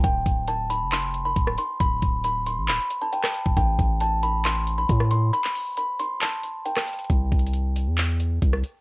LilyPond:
<<
  \new Staff \with { instrumentName = "Kalimba" } { \time 4/4 \key c \major \tempo 4 = 136 g''4 a''8 b''8 c'''8. b''8. c'''8 | b''4 b''8 c'''8 b''8. a''16 g''4 | g''4 a''8 b''8 c'''8. b''8. c'''8 | b''4 b''8 c'''8 a''4 g''8 r8 |
r1 | }
  \new Staff \with { instrumentName = "808-style bass" } { \clef bass \time 4/4 \key c \major d,,8 d,,4~ d,,16 f,,4~ f,,16 d,,8 r8 | d,,8 d,,4~ d,,16 a,,16 d,,16 r4. d,,16 | a,,8 a,,2~ a,,8 a,4 | r1 |
c,8 c,4~ c,16 e,4~ e,16 c,8 r8 | }
  \new DrumStaff \with { instrumentName = "Drums" } \drummode { \time 4/4 <hh bd>8 <hh bd>8 hh8 hh8 <hc hh>8 hh8 <hh bd>16 ss16 hh8 | <hh bd>8 <hh bd>8 hh8 hh8 <hc hh>8 hh8 hh16 <hc ss>16 hh16 bd16 | <hh bd>8 <hh bd>8 hh8 hh8 <hc hh>8 hh8 <hh bd>16 ss16 hh8 | hh16 hc16 hho8 hh8 hh8 <hc hh>8 hh8 hh16 <hc ss>16 hh32 hh32 hh32 hh32 |
\tuplet 3/2 { <hh bd>16 r16 r16 <hh bd>16 hh16 hh16 } hh8 hh8 <hc hh>8 hh8 <hh bd>16 ss16 hh8 | }
>>